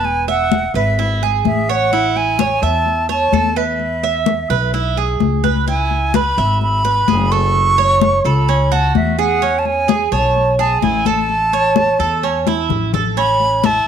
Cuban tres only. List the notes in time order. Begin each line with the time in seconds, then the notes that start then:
Already playing: B4
0.28 E5
0.75 B4
0.99 E4
1.23 G#4
1.69 C#5
1.93 E4
2.40 C#5
2.63 E5
3.09 C#5
3.33 A4
3.56 B4
4.04 E5
4.50 B4
4.74 E4
4.97 G#4
5.44 B4
5.68 E4
6.15 B4
6.38 E5
6.85 B4
7.08 G#4
7.32 A4
7.78 C#5
8.25 A4
8.49 C#4
8.72 F#4
9.19 G#4
9.42 C#4
9.88 G#4
10.12 C#5
10.59 G#4
10.83 E4
11.06 A4
11.53 C#5
12.00 A4
12.23 C#4
12.47 E4
12.94 A4
13.17 C#4
13.64 E4